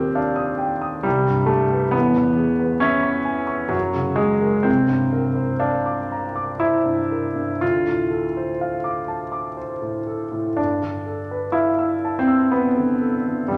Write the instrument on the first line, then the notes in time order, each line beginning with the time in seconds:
grand piano
Already playing: D#2 A#2 C4 G4 A#4
0.15 D4 F5
0.36 D#6
0.59 G5
0.82 D#6
1.03 C2 G3
1.28 G2
1.46 A3 G4
1.72 B4
1.91 A1 B3
2.16 E2
2.37 G#4
2.60 B4
2.80 C#4 E5 G#6 B6
3.03 C#6
3.25 G#5
3.47 C#6
3.69 F#2 F#3
3.93 C#3
4.16 G#3 G#4
4.42 A#4
4.63 C2 C4
4.88 G2
5.13 A#4
5.36 C5
5.60 D4 F5
5.86 D6
6.12 A#5
6.36 D6
6.60 E4 C5
6.86 G2
7.12 A#4
7.35 G2
7.61 D2 F4
7.86 A2
8.10 A4
8.37 C5
8.61 F5
8.84 D6
9.08 A5
9.32 D6
9.57 C5
9.82 A2
10.07 A4
10.32 A2
10.57 G2 D4
10.82 D3
11.06 A4
11.31 B4
11.52 E4 F5
11.79 E6
12.05 A5
12.19 C4
12.28 E6
12.51 B3 B4
12.77 D3
13.01 A4
13.27 D3
13.48 G2 G3